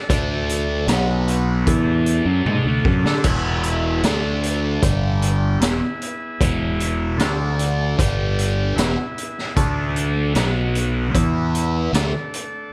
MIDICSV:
0, 0, Header, 1, 5, 480
1, 0, Start_track
1, 0, Tempo, 789474
1, 61, Time_signature, 4, 2, 24, 8
1, 7739, End_track
2, 0, Start_track
2, 0, Title_t, "Transistor combo organ"
2, 0, Program_c, 0, 18
2, 0, Note_on_c, 0, 57, 63
2, 0, Note_on_c, 0, 62, 62
2, 0, Note_on_c, 0, 69, 52
2, 0, Note_on_c, 0, 74, 57
2, 0, Note_on_c, 0, 81, 70
2, 531, Note_off_c, 0, 74, 0
2, 531, Note_off_c, 0, 81, 0
2, 532, Note_off_c, 0, 57, 0
2, 533, Note_off_c, 0, 62, 0
2, 533, Note_off_c, 0, 69, 0
2, 536, Note_on_c, 0, 78, 76
2, 537, Note_on_c, 0, 71, 57
2, 539, Note_on_c, 0, 59, 64
2, 543, Note_on_c, 0, 54, 71
2, 543, Note_on_c, 0, 66, 56
2, 1011, Note_off_c, 0, 78, 0
2, 1012, Note_off_c, 0, 71, 0
2, 1012, Note_on_c, 0, 81, 79
2, 1013, Note_off_c, 0, 59, 0
2, 1013, Note_on_c, 0, 69, 65
2, 1015, Note_off_c, 0, 54, 0
2, 1015, Note_off_c, 0, 66, 0
2, 1016, Note_on_c, 0, 62, 61
2, 1017, Note_on_c, 0, 57, 65
2, 1017, Note_on_c, 0, 74, 62
2, 1963, Note_off_c, 0, 69, 0
2, 1963, Note_off_c, 0, 81, 0
2, 1965, Note_off_c, 0, 57, 0
2, 1965, Note_off_c, 0, 62, 0
2, 1965, Note_off_c, 0, 74, 0
2, 1974, Note_on_c, 0, 68, 51
2, 1976, Note_on_c, 0, 64, 54
2, 1976, Note_on_c, 0, 76, 64
2, 1977, Note_on_c, 0, 71, 57
2, 1980, Note_on_c, 0, 59, 60
2, 2449, Note_off_c, 0, 68, 0
2, 2450, Note_off_c, 0, 64, 0
2, 2450, Note_off_c, 0, 71, 0
2, 2450, Note_off_c, 0, 76, 0
2, 2452, Note_off_c, 0, 59, 0
2, 2454, Note_on_c, 0, 62, 61
2, 2455, Note_on_c, 0, 81, 72
2, 2457, Note_on_c, 0, 74, 55
2, 2460, Note_on_c, 0, 57, 65
2, 2460, Note_on_c, 0, 69, 56
2, 2929, Note_off_c, 0, 81, 0
2, 2931, Note_off_c, 0, 57, 0
2, 2932, Note_off_c, 0, 69, 0
2, 2937, Note_on_c, 0, 79, 70
2, 2939, Note_on_c, 0, 67, 62
2, 2940, Note_on_c, 0, 55, 65
2, 3403, Note_off_c, 0, 62, 0
2, 3404, Note_off_c, 0, 74, 0
2, 3410, Note_off_c, 0, 79, 0
2, 3411, Note_off_c, 0, 55, 0
2, 3411, Note_off_c, 0, 67, 0
2, 3413, Note_on_c, 0, 71, 65
2, 3414, Note_on_c, 0, 59, 63
2, 3414, Note_on_c, 0, 64, 52
2, 3416, Note_on_c, 0, 68, 54
2, 3419, Note_on_c, 0, 76, 72
2, 4359, Note_on_c, 0, 57, 64
2, 4359, Note_on_c, 0, 62, 60
2, 4359, Note_on_c, 0, 81, 79
2, 4361, Note_on_c, 0, 69, 63
2, 4363, Note_off_c, 0, 59, 0
2, 4363, Note_off_c, 0, 64, 0
2, 4363, Note_off_c, 0, 71, 0
2, 4364, Note_off_c, 0, 68, 0
2, 4365, Note_on_c, 0, 74, 62
2, 4366, Note_off_c, 0, 76, 0
2, 4841, Note_off_c, 0, 57, 0
2, 4841, Note_off_c, 0, 62, 0
2, 4841, Note_off_c, 0, 81, 0
2, 4842, Note_off_c, 0, 69, 0
2, 4860, Note_on_c, 0, 55, 72
2, 4861, Note_on_c, 0, 62, 66
2, 4862, Note_on_c, 0, 79, 78
2, 4865, Note_on_c, 0, 67, 55
2, 5319, Note_off_c, 0, 74, 0
2, 5322, Note_on_c, 0, 76, 66
2, 5325, Note_on_c, 0, 59, 65
2, 5325, Note_on_c, 0, 64, 58
2, 5326, Note_on_c, 0, 68, 57
2, 5329, Note_on_c, 0, 71, 63
2, 5331, Note_off_c, 0, 55, 0
2, 5332, Note_off_c, 0, 62, 0
2, 5333, Note_off_c, 0, 79, 0
2, 5334, Note_off_c, 0, 67, 0
2, 5803, Note_off_c, 0, 76, 0
2, 5804, Note_off_c, 0, 59, 0
2, 5804, Note_off_c, 0, 64, 0
2, 5805, Note_off_c, 0, 68, 0
2, 5806, Note_off_c, 0, 71, 0
2, 5807, Note_on_c, 0, 81, 67
2, 5809, Note_on_c, 0, 69, 55
2, 5812, Note_on_c, 0, 57, 55
2, 5813, Note_on_c, 0, 74, 62
2, 5818, Note_on_c, 0, 62, 59
2, 6285, Note_off_c, 0, 81, 0
2, 6285, Note_on_c, 0, 59, 57
2, 6287, Note_off_c, 0, 69, 0
2, 6287, Note_on_c, 0, 66, 60
2, 6288, Note_off_c, 0, 57, 0
2, 6288, Note_off_c, 0, 74, 0
2, 6289, Note_on_c, 0, 54, 68
2, 6289, Note_on_c, 0, 71, 58
2, 6291, Note_off_c, 0, 62, 0
2, 6291, Note_on_c, 0, 78, 78
2, 6766, Note_off_c, 0, 66, 0
2, 6767, Note_off_c, 0, 54, 0
2, 6767, Note_on_c, 0, 52, 69
2, 6768, Note_off_c, 0, 78, 0
2, 6769, Note_on_c, 0, 64, 64
2, 6769, Note_on_c, 0, 76, 78
2, 7241, Note_off_c, 0, 59, 0
2, 7243, Note_off_c, 0, 71, 0
2, 7247, Note_off_c, 0, 52, 0
2, 7248, Note_off_c, 0, 64, 0
2, 7248, Note_off_c, 0, 76, 0
2, 7258, Note_on_c, 0, 69, 58
2, 7259, Note_on_c, 0, 62, 63
2, 7264, Note_on_c, 0, 57, 67
2, 7266, Note_on_c, 0, 74, 62
2, 7266, Note_on_c, 0, 81, 68
2, 7739, Note_off_c, 0, 57, 0
2, 7739, Note_off_c, 0, 62, 0
2, 7739, Note_off_c, 0, 69, 0
2, 7739, Note_off_c, 0, 74, 0
2, 7739, Note_off_c, 0, 81, 0
2, 7739, End_track
3, 0, Start_track
3, 0, Title_t, "Distorted electric guitar"
3, 0, Program_c, 1, 30
3, 58, Note_on_c, 1, 50, 96
3, 61, Note_on_c, 1, 57, 94
3, 67, Note_on_c, 1, 62, 96
3, 528, Note_off_c, 1, 50, 0
3, 530, Note_on_c, 1, 47, 85
3, 532, Note_off_c, 1, 57, 0
3, 535, Note_off_c, 1, 62, 0
3, 536, Note_on_c, 1, 54, 91
3, 537, Note_on_c, 1, 59, 101
3, 1006, Note_off_c, 1, 47, 0
3, 1009, Note_off_c, 1, 54, 0
3, 1010, Note_off_c, 1, 59, 0
3, 1017, Note_on_c, 1, 52, 84
3, 1021, Note_on_c, 1, 59, 91
3, 1023, Note_on_c, 1, 64, 103
3, 1369, Note_off_c, 1, 52, 0
3, 1371, Note_off_c, 1, 59, 0
3, 1372, Note_off_c, 1, 64, 0
3, 1374, Note_on_c, 1, 54, 86
3, 1376, Note_on_c, 1, 61, 84
3, 1488, Note_off_c, 1, 54, 0
3, 1489, Note_off_c, 1, 61, 0
3, 1495, Note_on_c, 1, 56, 83
3, 1497, Note_on_c, 1, 63, 87
3, 1608, Note_off_c, 1, 56, 0
3, 1609, Note_off_c, 1, 63, 0
3, 1620, Note_on_c, 1, 50, 79
3, 1623, Note_on_c, 1, 57, 104
3, 1729, Note_off_c, 1, 50, 0
3, 1731, Note_on_c, 1, 54, 68
3, 1732, Note_off_c, 1, 57, 0
3, 1737, Note_on_c, 1, 61, 88
3, 1846, Note_off_c, 1, 54, 0
3, 1849, Note_off_c, 1, 61, 0
3, 1857, Note_on_c, 1, 62, 81
3, 1863, Note_on_c, 1, 69, 99
3, 1969, Note_off_c, 1, 62, 0
3, 1970, Note_on_c, 1, 40, 84
3, 1972, Note_off_c, 1, 69, 0
3, 1975, Note_on_c, 1, 52, 105
3, 1976, Note_on_c, 1, 47, 86
3, 2445, Note_off_c, 1, 40, 0
3, 2447, Note_off_c, 1, 47, 0
3, 2447, Note_off_c, 1, 52, 0
3, 2455, Note_on_c, 1, 50, 94
3, 2456, Note_on_c, 1, 57, 99
3, 2462, Note_on_c, 1, 62, 100
3, 2926, Note_off_c, 1, 50, 0
3, 2927, Note_off_c, 1, 57, 0
3, 2930, Note_off_c, 1, 62, 0
3, 2931, Note_on_c, 1, 43, 88
3, 2935, Note_on_c, 1, 50, 100
3, 2936, Note_on_c, 1, 55, 97
3, 3405, Note_off_c, 1, 43, 0
3, 3407, Note_off_c, 1, 50, 0
3, 3407, Note_off_c, 1, 55, 0
3, 3411, Note_on_c, 1, 40, 80
3, 3416, Note_on_c, 1, 47, 98
3, 3524, Note_off_c, 1, 40, 0
3, 3527, Note_off_c, 1, 47, 0
3, 3897, Note_on_c, 1, 40, 95
3, 3899, Note_on_c, 1, 47, 96
3, 3899, Note_on_c, 1, 52, 100
3, 4367, Note_off_c, 1, 40, 0
3, 4368, Note_off_c, 1, 47, 0
3, 4368, Note_off_c, 1, 52, 0
3, 4373, Note_on_c, 1, 50, 102
3, 4378, Note_on_c, 1, 57, 93
3, 4382, Note_on_c, 1, 62, 109
3, 4845, Note_off_c, 1, 50, 0
3, 4848, Note_off_c, 1, 57, 0
3, 4850, Note_off_c, 1, 62, 0
3, 4854, Note_on_c, 1, 43, 94
3, 4856, Note_on_c, 1, 50, 96
3, 4860, Note_on_c, 1, 55, 109
3, 5326, Note_off_c, 1, 43, 0
3, 5327, Note_off_c, 1, 50, 0
3, 5329, Note_off_c, 1, 55, 0
3, 5340, Note_on_c, 1, 40, 86
3, 5342, Note_on_c, 1, 47, 101
3, 5449, Note_off_c, 1, 40, 0
3, 5450, Note_off_c, 1, 47, 0
3, 5812, Note_on_c, 1, 50, 102
3, 5815, Note_on_c, 1, 57, 101
3, 5817, Note_on_c, 1, 62, 102
3, 6286, Note_off_c, 1, 50, 0
3, 6287, Note_off_c, 1, 57, 0
3, 6288, Note_off_c, 1, 62, 0
3, 6290, Note_on_c, 1, 47, 87
3, 6294, Note_on_c, 1, 54, 99
3, 6296, Note_on_c, 1, 59, 106
3, 6768, Note_off_c, 1, 47, 0
3, 6768, Note_on_c, 1, 52, 83
3, 6771, Note_off_c, 1, 54, 0
3, 6771, Note_off_c, 1, 59, 0
3, 6771, Note_on_c, 1, 59, 95
3, 6776, Note_on_c, 1, 64, 106
3, 7245, Note_off_c, 1, 52, 0
3, 7246, Note_off_c, 1, 59, 0
3, 7249, Note_off_c, 1, 64, 0
3, 7252, Note_on_c, 1, 50, 84
3, 7256, Note_on_c, 1, 57, 83
3, 7367, Note_off_c, 1, 50, 0
3, 7368, Note_off_c, 1, 57, 0
3, 7739, End_track
4, 0, Start_track
4, 0, Title_t, "Fingered electric bass"
4, 0, Program_c, 2, 33
4, 59, Note_on_c, 2, 38, 102
4, 514, Note_off_c, 2, 38, 0
4, 529, Note_on_c, 2, 35, 99
4, 988, Note_off_c, 2, 35, 0
4, 1013, Note_on_c, 2, 40, 78
4, 1350, Note_off_c, 2, 40, 0
4, 1370, Note_on_c, 2, 42, 90
4, 1484, Note_off_c, 2, 42, 0
4, 1494, Note_on_c, 2, 44, 94
4, 1604, Note_off_c, 2, 44, 0
4, 1607, Note_on_c, 2, 38, 88
4, 1723, Note_off_c, 2, 38, 0
4, 1731, Note_on_c, 2, 42, 86
4, 1844, Note_off_c, 2, 42, 0
4, 1850, Note_on_c, 2, 50, 92
4, 1964, Note_off_c, 2, 50, 0
4, 1970, Note_on_c, 2, 28, 89
4, 2428, Note_off_c, 2, 28, 0
4, 2450, Note_on_c, 2, 38, 100
4, 2907, Note_off_c, 2, 38, 0
4, 2934, Note_on_c, 2, 31, 87
4, 3389, Note_off_c, 2, 31, 0
4, 3412, Note_on_c, 2, 28, 87
4, 3524, Note_off_c, 2, 28, 0
4, 3894, Note_on_c, 2, 28, 89
4, 4349, Note_off_c, 2, 28, 0
4, 4366, Note_on_c, 2, 38, 97
4, 4825, Note_off_c, 2, 38, 0
4, 4855, Note_on_c, 2, 31, 87
4, 5310, Note_off_c, 2, 31, 0
4, 5328, Note_on_c, 2, 28, 100
4, 5442, Note_off_c, 2, 28, 0
4, 5816, Note_on_c, 2, 38, 101
4, 6270, Note_off_c, 2, 38, 0
4, 6293, Note_on_c, 2, 35, 99
4, 6750, Note_off_c, 2, 35, 0
4, 6779, Note_on_c, 2, 40, 98
4, 7233, Note_off_c, 2, 40, 0
4, 7252, Note_on_c, 2, 38, 87
4, 7365, Note_off_c, 2, 38, 0
4, 7739, End_track
5, 0, Start_track
5, 0, Title_t, "Drums"
5, 60, Note_on_c, 9, 36, 98
5, 60, Note_on_c, 9, 42, 87
5, 120, Note_off_c, 9, 36, 0
5, 121, Note_off_c, 9, 42, 0
5, 300, Note_on_c, 9, 42, 69
5, 361, Note_off_c, 9, 42, 0
5, 535, Note_on_c, 9, 42, 82
5, 541, Note_on_c, 9, 38, 100
5, 596, Note_off_c, 9, 42, 0
5, 602, Note_off_c, 9, 38, 0
5, 778, Note_on_c, 9, 42, 72
5, 839, Note_off_c, 9, 42, 0
5, 1015, Note_on_c, 9, 36, 93
5, 1015, Note_on_c, 9, 42, 80
5, 1075, Note_off_c, 9, 42, 0
5, 1076, Note_off_c, 9, 36, 0
5, 1253, Note_on_c, 9, 42, 62
5, 1314, Note_off_c, 9, 42, 0
5, 1497, Note_on_c, 9, 48, 60
5, 1557, Note_off_c, 9, 48, 0
5, 1733, Note_on_c, 9, 36, 96
5, 1794, Note_off_c, 9, 36, 0
5, 1857, Note_on_c, 9, 38, 87
5, 1918, Note_off_c, 9, 38, 0
5, 1969, Note_on_c, 9, 42, 80
5, 1969, Note_on_c, 9, 49, 89
5, 1972, Note_on_c, 9, 36, 90
5, 2030, Note_off_c, 9, 42, 0
5, 2030, Note_off_c, 9, 49, 0
5, 2033, Note_off_c, 9, 36, 0
5, 2210, Note_on_c, 9, 42, 68
5, 2271, Note_off_c, 9, 42, 0
5, 2453, Note_on_c, 9, 42, 84
5, 2459, Note_on_c, 9, 38, 100
5, 2514, Note_off_c, 9, 42, 0
5, 2520, Note_off_c, 9, 38, 0
5, 2696, Note_on_c, 9, 42, 72
5, 2757, Note_off_c, 9, 42, 0
5, 2935, Note_on_c, 9, 36, 97
5, 2935, Note_on_c, 9, 42, 95
5, 2995, Note_off_c, 9, 36, 0
5, 2996, Note_off_c, 9, 42, 0
5, 3175, Note_on_c, 9, 42, 72
5, 3236, Note_off_c, 9, 42, 0
5, 3414, Note_on_c, 9, 42, 104
5, 3420, Note_on_c, 9, 38, 109
5, 3475, Note_off_c, 9, 42, 0
5, 3481, Note_off_c, 9, 38, 0
5, 3658, Note_on_c, 9, 42, 77
5, 3719, Note_off_c, 9, 42, 0
5, 3895, Note_on_c, 9, 36, 96
5, 3897, Note_on_c, 9, 42, 94
5, 3956, Note_off_c, 9, 36, 0
5, 3958, Note_off_c, 9, 42, 0
5, 4136, Note_on_c, 9, 42, 70
5, 4197, Note_off_c, 9, 42, 0
5, 4374, Note_on_c, 9, 42, 90
5, 4380, Note_on_c, 9, 38, 105
5, 4435, Note_off_c, 9, 42, 0
5, 4441, Note_off_c, 9, 38, 0
5, 4616, Note_on_c, 9, 42, 78
5, 4677, Note_off_c, 9, 42, 0
5, 4857, Note_on_c, 9, 36, 96
5, 4859, Note_on_c, 9, 42, 98
5, 4917, Note_off_c, 9, 36, 0
5, 4920, Note_off_c, 9, 42, 0
5, 5099, Note_on_c, 9, 42, 72
5, 5160, Note_off_c, 9, 42, 0
5, 5337, Note_on_c, 9, 42, 92
5, 5344, Note_on_c, 9, 38, 117
5, 5398, Note_off_c, 9, 42, 0
5, 5404, Note_off_c, 9, 38, 0
5, 5581, Note_on_c, 9, 42, 70
5, 5642, Note_off_c, 9, 42, 0
5, 5705, Note_on_c, 9, 38, 34
5, 5766, Note_off_c, 9, 38, 0
5, 5816, Note_on_c, 9, 36, 97
5, 5816, Note_on_c, 9, 42, 84
5, 5876, Note_off_c, 9, 42, 0
5, 5877, Note_off_c, 9, 36, 0
5, 6056, Note_on_c, 9, 42, 63
5, 6116, Note_off_c, 9, 42, 0
5, 6292, Note_on_c, 9, 42, 81
5, 6299, Note_on_c, 9, 38, 90
5, 6353, Note_off_c, 9, 42, 0
5, 6359, Note_off_c, 9, 38, 0
5, 6537, Note_on_c, 9, 42, 72
5, 6598, Note_off_c, 9, 42, 0
5, 6777, Note_on_c, 9, 36, 105
5, 6779, Note_on_c, 9, 42, 92
5, 6838, Note_off_c, 9, 36, 0
5, 6839, Note_off_c, 9, 42, 0
5, 7021, Note_on_c, 9, 42, 69
5, 7081, Note_off_c, 9, 42, 0
5, 7261, Note_on_c, 9, 42, 93
5, 7267, Note_on_c, 9, 38, 110
5, 7322, Note_off_c, 9, 42, 0
5, 7328, Note_off_c, 9, 38, 0
5, 7500, Note_on_c, 9, 42, 74
5, 7561, Note_off_c, 9, 42, 0
5, 7739, End_track
0, 0, End_of_file